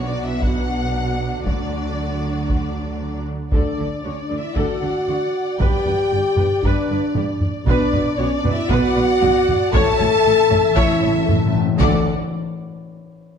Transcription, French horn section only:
0, 0, Header, 1, 2, 480
1, 0, Start_track
1, 0, Key_signature, 2, "major"
1, 0, Tempo, 517241
1, 1350, Time_signature, 4, 2, 24, 8
1, 12419, End_track
2, 0, Start_track
2, 0, Title_t, "French horn section"
2, 0, Program_c, 0, 60
2, 76, Note_on_c, 0, 62, 50
2, 227, Note_on_c, 0, 64, 50
2, 232, Note_off_c, 0, 62, 0
2, 388, Note_off_c, 0, 64, 0
2, 392, Note_on_c, 0, 66, 72
2, 1333, Note_off_c, 0, 66, 0
2, 1352, Note_on_c, 0, 62, 51
2, 3034, Note_off_c, 0, 62, 0
2, 3267, Note_on_c, 0, 62, 66
2, 3717, Note_off_c, 0, 62, 0
2, 3753, Note_on_c, 0, 61, 66
2, 3911, Note_off_c, 0, 61, 0
2, 3917, Note_on_c, 0, 62, 66
2, 4073, Note_off_c, 0, 62, 0
2, 4089, Note_on_c, 0, 64, 69
2, 4242, Note_off_c, 0, 64, 0
2, 4243, Note_on_c, 0, 66, 91
2, 5195, Note_on_c, 0, 67, 93
2, 5200, Note_off_c, 0, 66, 0
2, 6147, Note_on_c, 0, 62, 86
2, 6156, Note_off_c, 0, 67, 0
2, 6872, Note_off_c, 0, 62, 0
2, 7103, Note_on_c, 0, 62, 106
2, 7556, Note_off_c, 0, 62, 0
2, 7591, Note_on_c, 0, 61, 93
2, 7753, Note_off_c, 0, 61, 0
2, 7757, Note_on_c, 0, 62, 100
2, 7910, Note_on_c, 0, 64, 100
2, 7916, Note_off_c, 0, 62, 0
2, 8073, Note_off_c, 0, 64, 0
2, 8073, Note_on_c, 0, 66, 127
2, 9015, Note_on_c, 0, 69, 127
2, 9034, Note_off_c, 0, 66, 0
2, 9965, Note_off_c, 0, 69, 0
2, 9988, Note_on_c, 0, 64, 108
2, 10695, Note_off_c, 0, 64, 0
2, 10938, Note_on_c, 0, 62, 102
2, 11143, Note_off_c, 0, 62, 0
2, 12419, End_track
0, 0, End_of_file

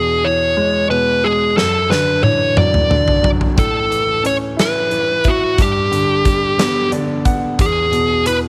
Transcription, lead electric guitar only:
0, 0, Header, 1, 2, 480
1, 0, Start_track
1, 0, Key_signature, 3, "major"
1, 0, Tempo, 669195
1, 1125, Time_signature, 6, 3, 24, 8
1, 6083, End_track
2, 0, Start_track
2, 0, Title_t, "Lead electric guitar"
2, 0, Program_c, 0, 29
2, 0, Note_on_c, 0, 68, 61
2, 176, Note_on_c, 0, 73, 70
2, 182, Note_off_c, 0, 68, 0
2, 622, Note_off_c, 0, 73, 0
2, 648, Note_on_c, 0, 71, 68
2, 889, Note_on_c, 0, 68, 74
2, 894, Note_off_c, 0, 71, 0
2, 1126, Note_off_c, 0, 68, 0
2, 1128, Note_on_c, 0, 69, 67
2, 1350, Note_off_c, 0, 69, 0
2, 1366, Note_on_c, 0, 71, 66
2, 1589, Note_off_c, 0, 71, 0
2, 1605, Note_on_c, 0, 73, 70
2, 1849, Note_off_c, 0, 73, 0
2, 1851, Note_on_c, 0, 74, 76
2, 2360, Note_off_c, 0, 74, 0
2, 2574, Note_on_c, 0, 69, 69
2, 3021, Note_off_c, 0, 69, 0
2, 3058, Note_on_c, 0, 73, 74
2, 3121, Note_off_c, 0, 73, 0
2, 3304, Note_on_c, 0, 71, 74
2, 3787, Note_on_c, 0, 66, 64
2, 3789, Note_off_c, 0, 71, 0
2, 4024, Note_off_c, 0, 66, 0
2, 4031, Note_on_c, 0, 67, 53
2, 4950, Note_off_c, 0, 67, 0
2, 5460, Note_on_c, 0, 68, 77
2, 5905, Note_off_c, 0, 68, 0
2, 5933, Note_on_c, 0, 71, 80
2, 5997, Note_off_c, 0, 71, 0
2, 6083, End_track
0, 0, End_of_file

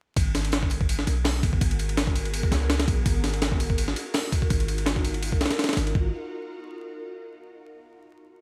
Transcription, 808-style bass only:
0, 0, Header, 1, 2, 480
1, 0, Start_track
1, 0, Tempo, 361446
1, 222, Time_signature, 4, 2, 24, 8
1, 11171, End_track
2, 0, Start_track
2, 0, Title_t, "808-style bass"
2, 0, Program_c, 0, 38
2, 218, Note_on_c, 0, 32, 103
2, 1403, Note_off_c, 0, 32, 0
2, 1424, Note_on_c, 0, 35, 82
2, 1885, Note_off_c, 0, 35, 0
2, 1902, Note_on_c, 0, 32, 101
2, 2120, Note_off_c, 0, 32, 0
2, 2142, Note_on_c, 0, 32, 101
2, 3325, Note_off_c, 0, 32, 0
2, 3341, Note_on_c, 0, 37, 84
2, 3804, Note_off_c, 0, 37, 0
2, 3822, Note_on_c, 0, 34, 93
2, 4040, Note_off_c, 0, 34, 0
2, 4061, Note_on_c, 0, 32, 100
2, 5244, Note_off_c, 0, 32, 0
2, 5983, Note_on_c, 0, 32, 99
2, 7165, Note_off_c, 0, 32, 0
2, 7660, Note_on_c, 0, 32, 88
2, 7879, Note_off_c, 0, 32, 0
2, 7902, Note_on_c, 0, 32, 100
2, 8126, Note_off_c, 0, 32, 0
2, 11171, End_track
0, 0, End_of_file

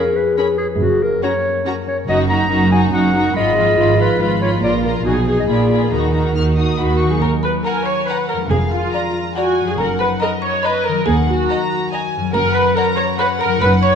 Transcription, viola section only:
0, 0, Header, 1, 2, 480
1, 0, Start_track
1, 0, Key_signature, -6, "minor"
1, 0, Tempo, 427046
1, 900, Time_signature, 3, 2, 24, 8
1, 15681, End_track
2, 0, Start_track
2, 0, Title_t, "Viola section"
2, 0, Program_c, 0, 48
2, 423, Note_on_c, 0, 61, 45
2, 513, Note_off_c, 0, 61, 0
2, 1388, Note_on_c, 0, 61, 49
2, 1478, Note_off_c, 0, 61, 0
2, 1867, Note_on_c, 0, 61, 48
2, 1957, Note_off_c, 0, 61, 0
2, 2336, Note_on_c, 0, 63, 53
2, 2570, Note_off_c, 0, 63, 0
2, 2585, Note_on_c, 0, 63, 49
2, 2801, Note_off_c, 0, 63, 0
2, 2815, Note_on_c, 0, 63, 49
2, 3044, Note_off_c, 0, 63, 0
2, 3057, Note_on_c, 0, 63, 47
2, 3288, Note_off_c, 0, 63, 0
2, 3302, Note_on_c, 0, 63, 49
2, 3525, Note_off_c, 0, 63, 0
2, 3539, Note_on_c, 0, 63, 49
2, 3770, Note_off_c, 0, 63, 0
2, 3779, Note_on_c, 0, 65, 55
2, 4002, Note_off_c, 0, 65, 0
2, 4015, Note_on_c, 0, 65, 48
2, 4236, Note_off_c, 0, 65, 0
2, 4250, Note_on_c, 0, 65, 52
2, 4475, Note_off_c, 0, 65, 0
2, 4488, Note_on_c, 0, 65, 43
2, 4717, Note_off_c, 0, 65, 0
2, 4730, Note_on_c, 0, 65, 49
2, 4957, Note_off_c, 0, 65, 0
2, 4970, Note_on_c, 0, 65, 46
2, 5198, Note_off_c, 0, 65, 0
2, 5212, Note_on_c, 0, 65, 49
2, 5439, Note_off_c, 0, 65, 0
2, 5452, Note_on_c, 0, 65, 42
2, 5685, Note_off_c, 0, 65, 0
2, 5696, Note_on_c, 0, 63, 43
2, 5918, Note_off_c, 0, 63, 0
2, 5932, Note_on_c, 0, 63, 36
2, 6166, Note_off_c, 0, 63, 0
2, 6179, Note_on_c, 0, 65, 40
2, 6407, Note_off_c, 0, 65, 0
2, 6421, Note_on_c, 0, 65, 38
2, 6655, Note_off_c, 0, 65, 0
2, 6664, Note_on_c, 0, 63, 39
2, 6888, Note_off_c, 0, 63, 0
2, 6902, Note_on_c, 0, 63, 39
2, 7133, Note_off_c, 0, 63, 0
2, 7146, Note_on_c, 0, 63, 39
2, 7373, Note_off_c, 0, 63, 0
2, 7387, Note_on_c, 0, 63, 35
2, 7625, Note_off_c, 0, 63, 0
2, 7635, Note_on_c, 0, 66, 51
2, 7639, Note_on_c, 0, 63, 36
2, 7860, Note_off_c, 0, 63, 0
2, 7874, Note_on_c, 0, 63, 37
2, 7973, Note_off_c, 0, 66, 0
2, 8002, Note_on_c, 0, 68, 46
2, 8111, Note_on_c, 0, 70, 62
2, 8112, Note_off_c, 0, 63, 0
2, 8120, Note_off_c, 0, 68, 0
2, 8201, Note_off_c, 0, 70, 0
2, 8360, Note_on_c, 0, 71, 59
2, 8450, Note_off_c, 0, 71, 0
2, 8600, Note_on_c, 0, 70, 61
2, 8836, Note_off_c, 0, 70, 0
2, 8840, Note_on_c, 0, 73, 59
2, 9079, Note_on_c, 0, 71, 54
2, 9081, Note_off_c, 0, 73, 0
2, 9317, Note_on_c, 0, 70, 63
2, 9320, Note_off_c, 0, 71, 0
2, 9407, Note_off_c, 0, 70, 0
2, 9559, Note_on_c, 0, 68, 62
2, 9649, Note_off_c, 0, 68, 0
2, 9799, Note_on_c, 0, 65, 57
2, 10272, Note_off_c, 0, 65, 0
2, 10522, Note_on_c, 0, 66, 65
2, 10858, Note_off_c, 0, 66, 0
2, 10882, Note_on_c, 0, 68, 48
2, 11000, Note_on_c, 0, 70, 71
2, 11003, Note_off_c, 0, 68, 0
2, 11090, Note_off_c, 0, 70, 0
2, 11242, Note_on_c, 0, 71, 66
2, 11332, Note_off_c, 0, 71, 0
2, 11489, Note_on_c, 0, 70, 66
2, 11579, Note_off_c, 0, 70, 0
2, 11720, Note_on_c, 0, 73, 65
2, 11956, Note_off_c, 0, 73, 0
2, 11963, Note_on_c, 0, 71, 63
2, 12199, Note_on_c, 0, 70, 72
2, 12202, Note_off_c, 0, 71, 0
2, 12433, Note_on_c, 0, 68, 72
2, 12440, Note_off_c, 0, 70, 0
2, 12523, Note_off_c, 0, 68, 0
2, 12677, Note_on_c, 0, 66, 65
2, 13146, Note_off_c, 0, 66, 0
2, 13861, Note_on_c, 0, 70, 81
2, 14089, Note_off_c, 0, 70, 0
2, 14102, Note_on_c, 0, 71, 73
2, 14342, Note_on_c, 0, 70, 74
2, 14346, Note_off_c, 0, 71, 0
2, 14432, Note_off_c, 0, 70, 0
2, 14574, Note_on_c, 0, 73, 74
2, 14664, Note_off_c, 0, 73, 0
2, 14817, Note_on_c, 0, 71, 82
2, 14907, Note_off_c, 0, 71, 0
2, 15064, Note_on_c, 0, 70, 78
2, 15299, Note_on_c, 0, 71, 85
2, 15301, Note_off_c, 0, 70, 0
2, 15389, Note_off_c, 0, 71, 0
2, 15540, Note_on_c, 0, 73, 81
2, 15681, Note_off_c, 0, 73, 0
2, 15681, End_track
0, 0, End_of_file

